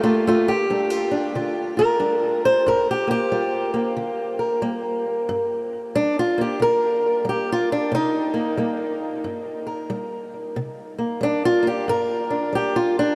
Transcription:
0.03 G2 A3 F4
0.27 A3 F4
0.48 G4
0.70 G3 D4
0.90 F4
1.11 D4
1.35 D3 F4
1.77 F4 A#4
1.99 G3 D4
2.45 C5
2.66 G2 A#4
2.91 G4
3.07 A#3 G4
3.32 G3 F4
3.74 A#3
3.97 D3
4.39 A#4
4.62 G3 A#3
5.29 G2
5.95 G3 D4
6.19 F4
6.38 A#3 G4
6.60 D3 A#4
7.25 G3
7.29 G4
7.52 F4
7.72 D4
7.92 C3 D#4
8.34 A#3
8.57 G3 A#3
9.24 G2
9.67 A#4
9.90 G3
10.56 C3
10.98 A#3
11.21 G3 D4
11.45 F4
11.63 A#3
11.67 G4
11.88 G2 A#4
12.30 D4
12.53 G3 G4
12.76 F4
12.99 D4

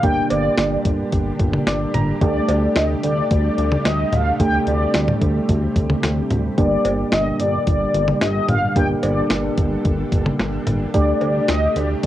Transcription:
Already playing: A#2 D3 G3 D4 G4
0.03 G1 A#3 D4 G4 G5, kick, closed hi-hat
0.30 G1 D5, closed hi-hat, cowbell
0.58 G1, snare, closed hi-hat
0.85 G1, kick, closed hi-hat
1.12 G1, kick, closed hi-hat
1.40 G1, kick, closed hi-hat
1.53 mid tom
1.67 G1 D5, snare, closed hi-hat
1.94 G1 A#5, closed hi-hat, mid tom
2.21 D2 C3 G3 A3 D4 G4 D5, kick, closed hi-hat
2.49 D2, closed hi-hat, cowbell
2.76 D2 D#5, snare, closed hi-hat
3.03 D2 D5, closed hi-hat
3.31 D2 D5, kick, closed hi-hat
3.58 D2, closed hi-hat
3.72 mid tom
3.85 D2 D#5, snare, closed hi-hat
4.12 D2 F5, closed hi-hat, mid tom
4.40 D2 A3 C4 D4 G4 G5, kick, closed hi-hat
4.67 D2 D5, closed hi-hat
4.94 D2, snare, closed hi-hat
5.08 mid tom
5.21 D2, kick, closed hi-hat
5.49 D2, kick, closed hi-hat
5.76 D2, kick, closed hi-hat
5.90 mid tom
6.03 D2, snare, closed hi-hat
6.31 D2, closed hi-hat, mid tom
6.58 G1 A#2 D3 A#3 D4 G4 D5, kick, closed hi-hat
6.85 G1, closed hi-hat, cowbell
7.12 G1 D#5, snare, closed hi-hat
7.40 G1 D5, closed hi-hat
7.67 G1 D5, kick, closed hi-hat
7.94 G1, closed hi-hat
8.08 mid tom
8.21 G1 D#5, snare, closed hi-hat
8.49 G1 F5, closed hi-hat, mid tom
8.76 G1 A#3 D4 G4 A4 G5, kick, closed hi-hat
9.03 G1 D5, closed hi-hat, cowbell
9.30 G1, snare, closed hi-hat
9.58 G1, kick, closed hi-hat
9.85 G1, kick, closed hi-hat
10.12 G1, kick, closed hi-hat
10.26 mid tom
10.39 G1, snare, closed hi-hat
10.67 G1, closed hi-hat, mid tom
10.94 D2 C3 A3 D4 G4 D5, kick, closed hi-hat
11.21 D2, closed hi-hat, cowbell
11.48 D2 D#5, snare, closed hi-hat
11.76 D2 D5, closed hi-hat
12.03 D5, closed hi-hat

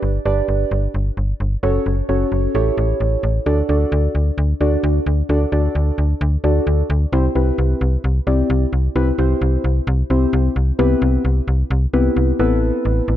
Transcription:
Already playing: D4 G4 B4 D5
0.03 G1
0.25 G1 D4 G4 B4 D5
0.48 G1
0.71 G1
0.94 G1
1.17 G1
1.40 G1
1.63 F#1 C#4 F#4 A4 C#5
1.86 F#1
2.09 F#1 C#4 F#4 A4 C#5
2.32 F#1
2.55 A1 E4 G4 A4 C#5
2.78 A1
3.00 A1
3.23 A1
3.46 D2 D4 F#4 A4 D5
3.69 D2 D4 F#4 A4 D5
3.92 D2
4.15 D2
4.38 D2
4.61 D2 D4 F#4 A4 D5
4.83 D2
5.06 D2
5.29 D2 D4 F#4 A4 D5
5.52 D2 D4 F#4 A4 D5
5.75 D2
5.98 D2
6.21 D2
6.44 D2 D4 F#4 A4 D5
6.67 D2
6.90 D2
7.13 C2 C4 E4 G4 C5
7.35 C2 C4 E4 G4 B4
7.58 C2
7.81 C2
8.04 C2
8.27 C2 C4 E4 G4 D5
8.50 C2
8.73 C2
8.96 C2 C4 E4 G4 B4
9.18 C2 C4 E4 G4 C5
9.41 C2
9.64 C2
9.87 C2
10.10 C2 C4 E4 G4 C5
10.33 C2
10.56 C2
10.79 C2 B3 C4 E4 G4 B4
11.02 C2
11.25 C2
11.48 C2
11.71 C2
11.93 C2 B3 C4 E4 G4 B4
12.16 C2
12.39 A1 B3 C4 E4 A4 B4
12.85 A1
13.08 A1

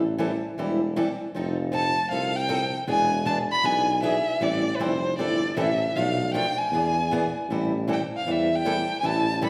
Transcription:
Already playing: A1
0.18 E3 G3 C4 E4 A4
0.58 E1 E3 G3 C4 E4 A4
0.96 E3 G3 C4 E4 A4
1.34 F1 F3 C4 D#4 A4
1.72 F3 C4 D#4 A4 A5
2.11 C2 F3 C4 D#4 A4 F5
2.36 G5
2.49 F3 C4 D#4 A4
2.87 E1 E3 B3 D4 G#4 G#5
3.25 E3 B3 D4 G#4 A5
3.52 B5
3.63 B1 E3 B3 D4 G#4 G#5
4.02 E3 B3 D4 G#4 E5
4.41 A1 E3 G3 C4 E4 A4 D5
4.76 F1 E3 B4 C5
4.80 G3 C4 E4 A4
5.18 G1 E3 G3 C4 E4 A4 D5
5.56 A1 E3 G3 C4 E4 A4 E5
5.95 B1 B2 F3 A3 D4 A4 F5
6.34 B2 F3 A3 D4 A4 G5
6.58 G#5
6.71 E2 E3 B3 D4 G#4
7.11 E3 B3 D4 G#4
7.49 A1 E3 G3 C4 E4 A4
7.88 E3 G3 C4 E4 A4
7.93 G5
8.17 F5
8.26 E2 E3 G3 C4 E4 A4
8.31 E5
8.55 G5
8.65 E3 G3 C4 E4 A4
9.00 A1 E3 G3 C4 G#5
9.04 E4 A4 A5
9.41 E3 G3 C4 E4 A4 B5

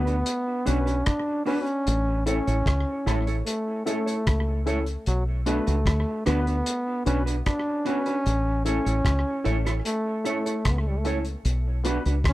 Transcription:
Already playing: D2 B3
0.06 D4 F#4 B4, closed hi-hat
0.26 closed hi-hat
0.66 B1 B3 C#4 D4 F#4 B4, closed hi-hat
0.86 D4 F#4 B4, closed hi-hat
1.06 D4, kick, cross-stick, closed hi-hat
1.46 B3 C#4 D4 F#4 B4, open hi-hat
1.55 D4
1.61 C#4
1.67 closed hi-hat
1.87 A1, closed hi-hat
2.26 A3 C#4 E4 A4 C#5, closed hi-hat
2.47 A1 E4 A4 C#5, closed hi-hat
2.66 C#2, kick, cross-stick, closed hi-hat
3.06 A1 A3 C#4 E4 A4 C#5, cross-stick, closed hi-hat
3.27 E4 A4 C#5, closed hi-hat
3.46 A3, closed hi-hat
3.85 A3 C#4 E4 A4 C#5, closed hi-hat
4.06 E4 A4 C#5, closed hi-hat
4.27 C#2, kick, cross-stick, closed hi-hat
4.66 A3 C#4 E4 A4 C#5, closed hi-hat
4.86 closed hi-hat
5.06 B1 F#3, closed hi-hat
5.46 A3 B3 D4 F#4 B4, closed hi-hat
5.66 C#2 D4 F#4 B4, closed hi-hat
5.86 D2, kick, cross-stick, closed hi-hat
6.26 D2 B3 D4 F#4 B4, cross-stick, closed hi-hat
6.46 D4 F#4 B4, closed hi-hat
6.66 closed hi-hat
7.05 B1 B3 C#4 D4 F#4 B4, closed hi-hat
7.26 D4 F#4 B4, closed hi-hat
7.46 D4, kick, cross-stick, closed hi-hat
7.85 B3 C#4 D4 F#4 B4, closed hi-hat
8.06 D4 F#4 B4, closed hi-hat
8.26 A1, closed hi-hat
8.65 A3 C#4 E4 A4 C#5, closed hi-hat
8.85 A1 E4 A4 C#5, closed hi-hat
9.05 C#2, kick, cross-stick, closed hi-hat
9.44 A1 A3 C#4 E4 A4 C#5, closed hi-hat
9.65 E4 A4 C#5, cross-stick, closed hi-hat
9.85 A3, closed hi-hat
10.24 A3 C#4 E4 A4 C#5, closed hi-hat
10.46 E4 A4 C#5, closed hi-hat
10.65 C#2, kick, cross-stick, closed hi-hat
10.71 B3
10.80 A3
10.90 G3
10.99 A3
11.04 A3 C#4 E4 A4 C#5, closed hi-hat
11.25 closed hi-hat
11.45 B1, closed hi-hat
11.84 B3 D4 F#4 B4, closed hi-hat
12.06 C#2 D4 F#4 B4, closed hi-hat
12.24 D2, kick, cross-stick, closed hi-hat
12.28 C#4

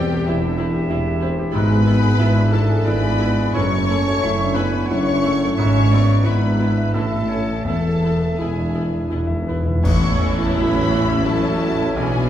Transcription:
Already playing: E1 E2 G3 C4 G4 D5 G5
0.14 G4
0.25 E1 E2 C4 E4 E5
0.44 D4
0.58 C4 E4
0.75 G4
0.89 E1 E2 C4 E4
1.08 G4
1.20 C4 E4 C5
1.39 G4
1.51 G#1 G#2 B3 E4 B4 B5
1.55 B3
1.69 G#4
1.85 B3 E4
2.02 G#4
2.17 G#1 G#2 B3 E4 E5
2.36 D4
2.51 A3 B3 E4 A4 A5
2.69 G#4
2.84 G#1 G#2 B3 E4 B4 D5 B5
3.02 G#4
3.20 B3 E4 B4
3.38 G#4
3.53 F#1 F#2 A3 C#4 E4 C#5 C#6
3.74 C#5
3.88 A3 E4
4.07 C#5
4.21 F#1 F#2 A3 E4 E5
4.42 D4
4.54 A3 B3 E4 B4 G#5 B5
4.72 C#5
4.86 F#1 F#2 A3 C#4 E4 C#5 F#5 C#6
4.91 E4
5.08 C#5
5.23 A3 E4 A4
5.43 C#5
5.54 G#1 G#2 C#4 C#5 E5 C#6
5.58 G#2 B3 E4
5.75 E5
5.91 B3 E4 D5
6.07 E5
6.23 G#1 G#2 B3 E4 B4 E5 B5
6.42 D4
6.60 B3 E4
6.78 E5
6.92 A1 A2 A3 C#4 E4 A4 E5 A5
7.12 E5
7.29 C#4 E4 C#5
7.48 E5
7.64 E1 E2 A3 A4 E5 A5
7.69 B3 E4
7.74 E2
7.81 E2
7.86 E5
7.90 E2
7.98 E2
8.02 E2 B3 E4
8.13 E2
8.20 E2 E5
8.28 E2
8.38 E1 E2 G#3 B3 E4 G#4 G#5
8.44 E2
8.52 E2
8.57 E2 D4
8.66 E2
8.74 E2 B3 E4
8.81 E2
8.89 E2 E5
8.96 E2
9.04 E2
9.10 E1 E2 B3 E4
9.19 E2
9.27 E2 E5
9.35 E2
9.43 E2 B4
9.49 E2 B3 E4
9.59 E2
9.66 E2 E5
9.75 E2
9.83 A1 A2 E3 C#4 E4 E5 C#6, concert bass drum, crash
9.87 A4 C#5
10.03 E2
10.21 C#4
10.39 E4 A4 A5
10.57 F#3 C#4 A4 B4 E5 B5
10.76 C#5
10.91 E3 E5
11.09 E6
11.25 F#3 C#4 A4 E5 A5
11.42 C#5
11.61 F#4 E5
11.79 E4
11.95 B1 B2 E3 C#4 D4 E4 G#4 D5 G#5
12.16 B2

